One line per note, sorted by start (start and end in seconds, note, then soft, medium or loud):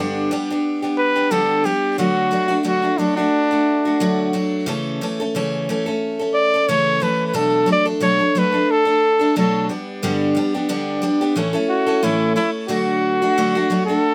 0.00 0.30 G2 medium
0.00 0.31 D3 medium
0.00 0.30 G3 medium
0.00 0.30 B3 medium
0.00 0.31 D4 medium
0.00 0.31 G4 medium
0.31 0.49 G3 medium
0.31 0.49 B3 medium
0.31 0.50 D4 medium
0.31 0.49 G4 medium
0.50 0.84 G3 soft
0.50 0.83 B3 soft
0.50 0.82 D4 soft
0.50 0.81 G4 medium
0.82 1.16 G3 soft
0.82 1.16 B3 soft
0.82 1.15 D4 soft
0.82 1.14 G4 soft
0.98 1.33 B4 medium
1.16 1.30 G3 soft
1.16 1.31 B3 soft
1.16 1.31 D4 soft
1.16 1.31 G4 soft
1.31 1.64 G2 medium
1.31 1.65 D3 medium
1.31 1.63 G3 medium
1.31 1.64 B3 medium
1.31 1.65 D4 medium
1.31 1.65 G4 medium
1.31 1.67 A4 medium
1.64 1.98 G3 soft
1.64 1.98 B3 medium
1.64 1.98 D4 medium
1.64 1.98 G4 medium
1.64 1.99 G4 medium
1.98 2.32 D3 medium
1.98 2.30 F#3 medium
1.98 2.30 A3 medium
1.98 2.31 D4 medium
1.98 2.61 F#4 medium
1.98 2.32 F#4 medium
2.31 2.50 F#3 medium
2.31 2.49 A3 medium
2.31 2.48 D4 medium
2.31 2.47 F#4 medium
2.48 2.63 A3 soft
2.48 2.63 D4 soft
2.48 2.64 F#4 medium
2.63 2.83 D3 medium
2.63 2.83 F#3 medium
2.63 2.83 A3 medium
2.63 2.82 D4 medium
2.63 2.81 F#4 medium
2.63 3.00 F#4 medium
2.82 2.98 A3 soft
2.82 2.98 D4 soft
2.82 2.98 F#4 soft
2.98 3.17 F#3 medium
2.98 3.17 A3 medium
2.98 3.16 D4 medium
2.98 3.17 D4 medium
2.98 3.16 F#4 medium
3.16 3.52 A3 soft
3.16 4.28 D4 medium
3.16 3.51 D4 soft
3.16 3.50 F#4 soft
3.51 3.85 A3 soft
3.51 3.85 D4 soft
3.51 3.84 F#4 soft
3.85 4.00 A3 soft
3.85 4.00 D4 soft
3.85 4.00 F#4 soft
4.00 4.33 D3 medium
4.00 4.32 F#3 medium
4.00 4.33 A3 medium
4.00 4.33 D4 medium
4.00 4.33 F#4 medium
4.33 4.66 F#3 medium
4.33 4.66 A3 medium
4.33 4.67 D4 medium
4.33 4.67 F#4 medium
4.66 5.00 C#3 medium
4.66 5.00 E3 medium
4.66 5.00 A3 medium
4.66 5.00 C#4 medium
4.66 5.01 A4 medium
5.01 5.19 E3 medium
5.01 5.19 A3 medium
5.01 5.20 C#4 medium
5.01 5.19 A4 medium
5.20 5.35 A3 soft
5.20 5.35 C#4 soft
5.20 5.34 A4 medium
5.35 5.67 C#3 medium
5.35 5.68 E3 medium
5.35 5.68 A3 medium
5.35 5.68 C#4 medium
5.35 5.68 A4 medium
5.69 5.86 E3 medium
5.69 5.86 A3 medium
5.69 5.86 C#4 medium
5.69 5.85 A4 medium
5.86 6.20 A3 soft
5.86 6.20 C#4 soft
5.86 6.18 A4 medium
6.19 6.54 A3 soft
6.19 6.53 C#4 soft
6.19 6.52 A4 soft
6.34 6.70 D5 medium
6.54 6.67 A3 soft
6.54 6.68 C#4 soft
6.54 6.68 A4 soft
6.68 7.01 C#3 medium
6.68 6.99 E3 medium
6.68 7.00 A3 medium
6.68 7.00 C#4 medium
6.68 7.01 A4 medium
6.68 7.04 C#5 medium
7.00 7.33 E3 medium
7.00 7.33 A3 medium
7.00 7.34 C#4 medium
7.00 7.33 A4 medium
7.00 7.27 B4 medium
7.27 7.37 B4 medium
7.33 7.67 B2 medium
7.33 7.65 F#3 medium
7.33 7.66 A3 medium
7.33 7.67 D4 medium
7.33 7.68 A4 medium
7.66 7.85 F#3 medium
7.66 7.86 A3 medium
7.66 7.86 D4 medium
7.66 7.84 A4 medium
7.72 7.86 D5 medium
7.85 8.00 A3 soft
7.85 8.00 D4 soft
7.85 8.01 A4 medium
8.00 8.19 B2 medium
8.00 8.19 F#3 medium
8.00 8.19 A3 medium
8.00 8.19 D4 medium
8.00 8.18 A4 medium
8.00 8.40 C#5 medium
8.19 8.34 A3 soft
8.19 8.35 D4 soft
8.19 8.34 A4 soft
8.35 8.53 F#3 medium
8.35 8.53 A3 medium
8.35 8.53 D4 medium
8.35 8.51 A4 medium
8.35 8.73 B4 medium
8.52 8.87 A3 soft
8.52 8.86 D4 soft
8.52 8.84 A4 soft
8.71 9.36 A4 medium
8.85 9.20 A3 soft
8.85 9.20 D4 soft
8.85 9.18 A4 soft
9.19 9.36 A3 soft
9.19 9.35 D4 medium
9.19 9.35 A4 soft
9.36 9.69 B2 medium
9.36 9.69 F#3 medium
9.36 9.69 A3 medium
9.36 9.69 D4 medium
9.36 9.69 A4 medium
9.36 9.68 A4 medium
9.69 10.02 G3 soft
9.69 10.02 B3 medium
9.69 10.03 D4 medium
9.69 10.03 G4 medium
10.03 10.36 G2 medium
10.03 10.36 D3 medium
10.03 10.34 G3 medium
10.03 10.35 B3 medium
10.03 10.35 D4 medium
10.03 10.36 G4 medium
10.35 10.53 G3 medium
10.35 10.54 B3 medium
10.35 10.54 D4 medium
10.35 10.53 G4 medium
10.54 10.68 G3 soft
10.54 10.68 B3 soft
10.54 10.69 D4 medium
10.54 10.69 G4 medium
10.69 11.02 G2 medium
10.69 11.02 D3 medium
10.69 11.00 G3 medium
10.69 11.02 B3 medium
10.69 11.02 D4 medium
10.69 11.03 G4 medium
11.02 11.20 G3 medium
11.02 11.21 B3 medium
11.02 11.20 D4 medium
11.02 11.20 G4 medium
11.21 11.36 G3 soft
11.21 11.36 B3 soft
11.21 11.36 D4 medium
11.21 11.36 G4 medium
11.35 11.54 A2 medium
11.35 11.54 E3 medium
11.35 11.54 A3 medium
11.35 11.54 C#4 medium
11.35 11.53 E4 medium
11.35 11.52 A4 medium
11.53 11.87 A3 soft
11.53 11.87 C#4 medium
11.53 11.86 E4 soft
11.53 11.85 A4 medium
11.69 12.05 F#4 medium
11.87 12.01 A3 soft
11.87 12.02 C#4 soft
11.87 12.02 E4 soft
11.87 12.02 A4 medium
12.03 12.36 A2 medium
12.03 12.36 E3 medium
12.03 12.35 A3 medium
12.03 12.35 C#4 medium
12.03 12.35 E4 medium
12.03 12.36 A4 medium
12.36 12.68 A3 medium
12.36 12.69 C#4 medium
12.36 12.51 E4 medium
12.36 12.69 E4 medium
12.36 12.70 A4 medium
12.68 13.21 D3 medium
12.68 13.21 F#3 medium
12.68 13.21 A3 medium
12.68 13.21 D4 medium
12.68 13.84 F#4 medium
12.68 13.21 F#4 medium
13.22 13.37 A3 soft
13.22 13.37 D4 medium
13.22 13.37 F#4 medium
13.38 13.55 D3 medium
13.38 13.56 F#3 medium
13.38 13.56 A3 medium
13.38 13.55 D4 medium
13.38 13.54 F#4 medium
13.55 13.69 A3 soft
13.55 13.71 D4 soft
13.55 13.70 F#4 medium
13.70 13.88 F#3 medium
13.70 13.89 A3 medium
13.70 13.88 D4 medium
13.70 13.87 F#4 medium
13.87 14.14 A3 soft
13.87 14.14 D4 soft
13.87 14.14 F#4 soft
13.87 14.14 A4 medium